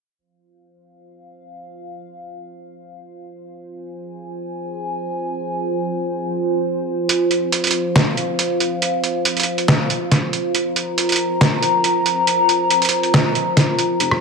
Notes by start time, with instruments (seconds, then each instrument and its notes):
0.18 analog synth pad F4 C5 F5
3.64 analog synth pad G#5
7.09 analog synth pad F5, closed hi-hat
7.31 closed hi-hat
7.52 closed hi-hat
7.64 closed hi-hat
7.67 closed hi-hat
7.71 closed hi-hat
7.96 snare, closed hi-hat
8.17 closed hi-hat
8.39 closed hi-hat
8.60 closed hi-hat
8.82 closed hi-hat
9.04 closed hi-hat
9.25 closed hi-hat
9.37 closed hi-hat
9.40 closed hi-hat
9.43 closed hi-hat
9.58 closed hi-hat
9.68 snare, closed hi-hat
9.90 closed hi-hat
10.12 snare, closed hi-hat
10.33 closed hi-hat
10.54 analog synth pad A#5, closed hi-hat
10.76 closed hi-hat
10.98 closed hi-hat
11.09 closed hi-hat
11.12 closed hi-hat
11.16 closed hi-hat
11.41 snare, closed hi-hat
11.63 closed hi-hat
11.84 closed hi-hat
12.06 closed hi-hat
12.27 closed hi-hat
12.49 closed hi-hat
12.70 closed hi-hat
12.82 closed hi-hat
12.85 closed hi-hat
12.89 closed hi-hat
13.03 closed hi-hat
13.14 snare, closed hi-hat
13.35 closed hi-hat
13.57 snare, closed hi-hat
13.79 closed hi-hat
14.00 detuned saw bass F1, closed hi-hat
14.11 cross-stick